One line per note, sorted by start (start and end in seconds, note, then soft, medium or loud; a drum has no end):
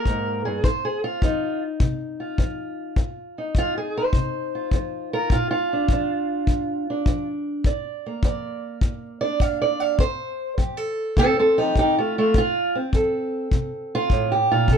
0.00 0.65 A#3 medium
0.00 0.44 A#4 loud
0.00 0.63 D5 soft
0.05 0.45 G#2 medium
0.05 kick medium
0.45 0.64 G2 medium
0.45 0.65 G#4 medium
0.64 1.19 F2 medium
0.64 0.84 C5 medium
0.64 kick medium
0.85 1.03 G#4 medium
1.04 1.62 F4 medium
1.22 1.77 F3 medium
1.22 2.96 D#4 soft
1.22 kick medium
1.80 2.36 C3 medium
1.80 kick medium
2.20 3.41 F4 soft
2.38 2.94 F3 medium
2.38 kick medium
2.96 3.52 F2 medium
2.96 kick medium
3.38 5.30 D#4 soft
3.55 4.11 F3 medium
3.55 3.77 F4 loud
3.55 kick medium
3.78 3.96 G#4 medium
3.97 5.13 C5 medium
4.13 4.69 C3 medium
4.13 kick medium
4.55 5.13 F4 soft
4.71 5.28 F3 medium
4.71 kick medium
5.13 5.32 F4 soft
5.13 5.32 A#4 loud
5.30 5.87 A#2 medium
5.30 5.49 F4 loud
5.30 kick medium
5.51 7.27 F4 medium
5.73 5.93 D4 soft
5.89 6.46 F3 medium
5.89 kick medium
5.93 6.89 D4 soft
6.47 7.04 F3 medium
6.47 kick medium
6.90 7.65 D4 soft
7.06 7.62 F3 medium
7.06 kick medium
7.64 8.20 F2 medium
7.64 8.24 D5 medium
7.64 kick medium
8.06 10.01 A#3 soft
8.23 8.79 F3 medium
8.23 9.20 D5 soft
8.23 kick medium
8.81 9.37 F2 medium
8.81 kick medium
9.21 10.00 D4 soft
9.21 9.41 D5 loud
9.40 9.61 F5 medium
9.40 kick medium
9.62 9.80 D5 medium
9.80 10.00 F5 medium
9.99 10.54 F2 medium
9.99 10.58 C5 loud
9.99 kick medium
10.58 11.13 F3 medium
10.58 10.77 G4 soft
10.58 kick medium
10.77 11.17 A4 soft
11.17 11.72 C3 medium
11.17 11.37 C4 medium
11.17 11.38 A4 loud
11.17 kick medium
11.39 11.58 C4 medium
11.39 11.58 A4 loud
11.58 11.75 F3 medium
11.58 11.77 D#4 loud
11.58 11.77 G4 loud
11.76 11.96 F3 medium
11.76 11.97 D#4 medium
11.76 11.97 G4 medium
11.76 kick medium
11.98 12.17 A3 medium
11.98 12.16 F4 medium
12.18 12.36 A3 medium
12.18 12.36 F4 medium
12.34 12.89 F2 medium
12.34 12.75 F4 loud
12.34 kick medium
12.75 14.78 C4 medium
12.93 13.48 F3 medium
12.93 14.31 A4 soft
12.93 kick medium
13.52 14.07 C3 medium
13.52 kick medium
13.95 14.32 F4 loud
14.10 14.50 A2 medium
14.10 kick medium
14.32 14.50 G4 medium
14.51 14.70 A#2 medium
14.51 14.70 F4 medium
14.68 14.78 C3 medium
14.68 kick medium
14.73 14.78 A4 medium